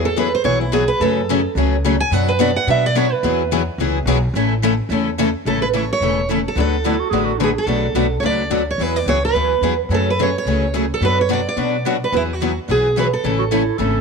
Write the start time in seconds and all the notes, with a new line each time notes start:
Already playing: E2
0.05 A4
0.16 E3 F#3 B3 E4 G#4 B4
0.35 C5
0.44 B1 E3 F#3 B3 E4 G#4 C#5
0.61 E4
0.72 E3 F#3 B3 E4 G#4
0.88 B4
1.00 F#2 C#3 F#3 A3 C#4 G#4 A4
1.29 C#3 F#3 A3 C#4 G#4
1.55 C#2 C#3 F#3 A3 C#4 G#4
1.84 C#3 F#3 A3 C#4 G#4
2.00 G#5
2.11 F#2 B2 F#3 B3 D4 F#4 B4 F#5
2.29 B4
2.39 B2 F#3 B3 D4 F#4 B4 D5
2.56 F#5
2.67 B2 F#3 B3 D4 F#4 B4 E5
2.86 D5
2.95 B2 F#3 B3 D4 F#4 B4 C#5
3.12 B4
3.23 E2 E3 F#3 B3 E4 F#4 G#4
3.52 E3 F#3 B3 E4 F#4 G#4
3.78 C#2 E3 F#3 B3 E4 F#4 G#4
4.06 B1 E3 F#3 B3 E4 F#4 G#4
4.34 A1 C#3 E3 A3 C#4 E4 A4
4.63 C#3 E3 A3 C#4 E4 A4
4.89 E2 C#3 E3 A3 C#4 E4 A4
5.18 C#3 E3 A3 C#4 E4 A4
5.45 A1 C#3 E3 A3 C#4 E4 A4
5.62 B4
5.73 C#3 E3 A3 C#4 E4 A4 C#5
5.93 C#5
6.00 E1 C#3 E3 A3 C#4 E4 A4
6.29 C#3 E3 A3 C#4 E4 A4
6.48 A4
6.55 D2 D3 F#3 A3 B3 D4 F#4 B4
6.60 A4
6.83 D3 F#3 A3 B3 D4 E4 F#4 B4
7.00 F#4
7.10 A1 D3 F#3 A3 B3 D4 F#4 G#4
7.14 B4
7.25 F#4
7.38 D3 F#3 A3 B3 D4 F#4 B4
7.43 G#4
7.58 A4
7.66 B1 B2 F#3 A3 D4 F#4 B4
7.95 B1 B2 F#3 A3 D4 F#4 B4
8.20 C#2 B2 F#3 A3 D4 F#4 C#5
8.24 B4 D5
8.50 D2 B2 F#3 A3 D4 F#4 B4
8.71 C#5
8.78 E2 E3 F#3 B3 E4 F#4 G#4 B4
8.96 D5
9.06 C#2 E3 F#3 B3 E4 F#4 G#4 C#5
9.25 B4
9.34 D2 E3 F#3 B3 E4 F#4 G#4
9.61 E2 E3 F#3 B3 E4 F#4 G#4
9.89 F#2 C#3 F#3 A3 C#4 G#4
9.94 A4
10.10 B4
10.19 C#3 F#3 A3 C#4 G#4 C#5
10.38 C#5
10.45 C#2 C#3 F#3 A3 C#4 G#4
10.74 C#3 F#3 A3 C#4 G#4
10.94 A4
11.01 F#2 B2 F#3 B3 D4 F#4 B4
11.05 B4
11.21 C#5
11.29 B2 F#3 B3 D4 F#4 B4
11.33 D5
11.49 D5
11.57 B2 F#3 B3 D4 F#4 B4
11.86 B2 F#3 B3 D4 F#4 B4
12.04 B4
12.12 E2 E3 F#3 B3 E4 F#4 G#4
12.17 E4
12.33 F#4
12.42 E3 F#3 B3 E4 F#4 G#4
12.68 B1 E3 F#3 B3 E4 F#4 G#4
12.97 E3 F#3 B3 E4 F#4 G#4 B4
13.13 A4
13.24 A1 C#3 E3 A3 C#4 E4 A4
13.39 F#4
13.51 C#3 E3 A3 C#4 E4 A4
13.78 G#1 C#3 E3 A3 C#4 E4 A4